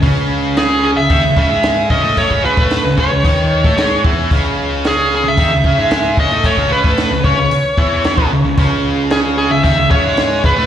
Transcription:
<<
  \new Staff \with { instrumentName = "Lead electric guitar" } { \time 4/4 \key cis \minor \tempo 4 = 112 r4 gis'8 gis'16 e''4.~ e''16 dis''8 | cis''8 b'4 cis''2 r8 | r4 gis'8 gis'16 e''4.~ e''16 dis''8 | cis''8 b'4 cis''2 r8 |
r4 gis'8 gis'16 e''16 e''8 cis''4 b'8 | }
  \new Staff \with { instrumentName = "Overdriven electric guitar" } { \clef bass \time 4/4 \key cis \minor <cis cis'>4.~ <cis cis'>16 cis16 <dis dis'>16 cis16 <cis cis'>16 <gis gis'>8. <cis cis'>16 <a a'>16~ | <a a'>16 <cis cis'>8 <a a'>8 cis16 <cis cis'>16 cis16 <dis dis'>8. <a a'>16 <gis gis'>8 <e e'>8 | <cis cis'>4.~ <cis cis'>16 cis16 <dis dis'>16 cis16 <cis cis'>16 <gis gis'>8. <cis cis'>16 <a a'>16~ | <a a'>16 <cis cis'>8 <a a'>8 cis16 <cis cis'>16 cis16 r8 <e e'>8. <b, b>16 cis16 cis16 |
<cis cis'>4.~ <cis cis'>16 cis16 <dis dis'>16 cis16 <cis cis'>16 <gis gis'>8. <cis cis'>16 <a a'>16 | }
  \new Staff \with { instrumentName = "Picked electric bass" } { \clef bass \time 4/4 \key cis \minor cis,4.~ cis,16 cis,16 dis,16 cis,16 cis,16 gis,8. cis,16 a,16~ | a,16 cis,8 a,8 cis,16 cis,16 cis,16 dis,8. a,16 gis,8 e,8 | cis,4.~ cis,16 cis,16 dis,16 cis,16 cis,16 gis,8. cis,16 a,16~ | a,16 cis,8 a,8 cis,16 cis,16 cis,16 r8 e,8. b,,16 cis,16 cis,16 |
cis,4.~ cis,16 cis,16 dis,16 cis,16 cis,16 gis,8. cis,16 a,16 | }
  \new DrumStaff \with { instrumentName = "Drums" } \drummode { \time 4/4 <hho bd>4 <hho sn>4 <hho bd>8 bd8 <hho sn>8 bd8 | <hho bd>16 bd8 bd16 <hho sn>8 bd8 <hho bd>8. bd16 <hho sn>8 bd8 | <hho bd>4 <hho sn>4 <hho bd>8 bd8 <hho sn>8 bd8 | <hho bd>16 bd8 bd16 <hho sn>8 bd8 hho8 bd8 <hho sn>16 bd8. |
<hho bd>4 <hho sn>4 <hho bd>8 bd8 <hho sn>8 bd8 | }
>>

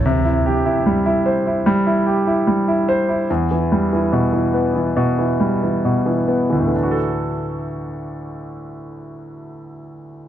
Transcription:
\new Staff \with { instrumentName = "Grand piano" } { \clef bass \time 4/4 \key d \major \tempo 4 = 70 c16 e'16 g'16 e'16 g16 e'16 c''16 e'16 g16 e'16 g'16 e'16 g16 e'16 c''16 e'16 | e,16 e16 g16 e16 b,16 e16 b16 e16 b,16 e16 g16 e16 b,16 e16 b16 e16 | <d, a, e d' fis' a'>1 | }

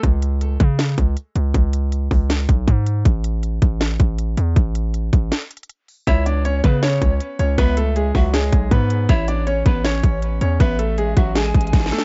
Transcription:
<<
  \new Staff \with { instrumentName = "Pan flute" } { \time 4/4 \key cis \phrygian \tempo 4 = 159 r1 | r1 | r1 | r1 |
cis''4. b'8 cis''4 r4 | e''4. e''8 cis''4 r4 | cis''4. b'8 cis''4 r4 | e''4. e''8 gis''2 | }
  \new Staff \with { instrumentName = "Grand piano" } { \time 4/4 \key cis \phrygian r1 | r1 | r1 | r1 |
<e' e''>8 <d' d''>8 <cis' cis''>8 <b b'>8 <cis' cis''>4. <cis' cis''>8 | <b b'>8 <a a'>8 <gis gis'>8 <fis fis'>8 <gis gis'>4 <b b'>4 | <e' e''>8 <d' d''>8 <cis' cis''>8 <b b'>8 <cis' cis''>4. <cis' cis''>8 | <b b'>8 <a a'>8 <gis gis'>8 <fis fis'>8 <gis gis'>4. <a a'>8 | }
  \new Staff \with { instrumentName = "808-style bass" } { \clef bass \time 4/4 \key cis \phrygian cis,4. cis4 cis,8 r8 cis,8 | cis,4. cis,4 b,,8 gis,4 | a,,4. a,,4 a,,4 e,8 | a,,4. a,,8 r2 |
cis,4. cis4 cis,8 r8 cis,8 | cis,4. cis,4 b,,8 gis,4 | a,,4. a,,4 a,,4 e,8 | a,,4. a,,4 a,,8 a,,8 r8 | }
  \new DrumStaff \with { instrumentName = "Drums" } \drummode { \time 4/4 <hh bd>8 hh8 hh8 <hh bd>8 <hh sn>8 <hh bd>8 hh8 hh8 | <hh bd>8 hh8 hh8 <hho bd>8 <hh sn>8 <hh bd>8 <hh bd>8 hh8 | <hh bd>8 hh8 hh8 <hh bd>8 <hh sn>8 <hh bd>8 hh8 hh8 | <hh bd>8 hh8 hh8 <hh bd>8 \tuplet 3/2 { <hh sn>16 r16 r16 hh16 hh16 hh16 } hh8 hho8 |
<hh bd>8 hh8 hh8 <hh bd>8 <hh sn>8 <hh bd>8 hh8 hh8 | <hh bd>8 hh8 hh8 <hho bd>8 <hh sn>8 <hh bd>8 <hh bd>8 hh8 | <hh bd>8 hh8 hh8 <hh bd>8 <hh sn>8 <hh bd>8 hh8 hh8 | <hh bd>8 hh8 hh8 <hh bd>8 \tuplet 3/2 { <hh sn>16 r16 r16 <hh bd>16 hh16 hh16 <hh bd sn>16 sn16 sn16 <hho sn>16 sn16 r16 } | }
>>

